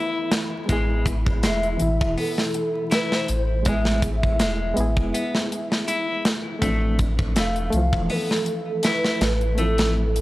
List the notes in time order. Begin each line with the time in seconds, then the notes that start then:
Already playing: E3 A3 B3 E4 A4
0.32 snare, closed hi-hat
0.66 A1 G#3 B3, kick, closed hi-hat
0.70 E4 G#4
1.06 kick, closed hi-hat
1.26 kick
1.43 E1 G#3 E5, snare, closed hi-hat, maracas
1.63 closed hi-hat
1.78 A1 B2 E3, closed hi-hat
1.82 E4
2.01 E1, kick
2.18 B3 A4, open hi-hat
2.38 snare
2.54 closed hi-hat
2.91 E4 B4, snare, closed hi-hat, maracas
3.12 C5, snare
3.28 A1, closed hi-hat
3.63 G#3 B3, kick, closed hi-hat
3.67 E4 G#4 E5
3.85 snare
4.02 kick, closed hi-hat
4.23 kick
4.39 E1 G#3, snare, closed hi-hat, maracas
4.74 A1 G#3 B3, closed hi-hat
4.78 E4 G#4
4.97 E1, kick
5.14 B3, closed hi-hat
5.35 snare
5.52 closed hi-hat
5.72 snare
5.88 E4, closed hi-hat, maracas
6.25 snare, closed hi-hat
6.59 A1 A3 C4, kick, closed hi-hat
6.64 F3 D4
6.99 kick, closed hi-hat
7.19 kick
7.36 E1 A3 F5, snare, closed hi-hat, maracas
7.56 closed hi-hat
7.70 C2 A3, closed hi-hat
7.75 E3 F3
7.93 E1, kick
8.10 B3 A4, open hi-hat
8.31 snare
8.46 closed hi-hat
8.83 E4 B4, snare, closed hi-hat, maracas
9.04 snare
9.21 A1, snare, closed hi-hat
9.41 closed hi-hat
9.55 A3 C4, closed hi-hat
9.59 F3 E4 A4
9.78 snare, closed hi-hat
10.16 closed hi-hat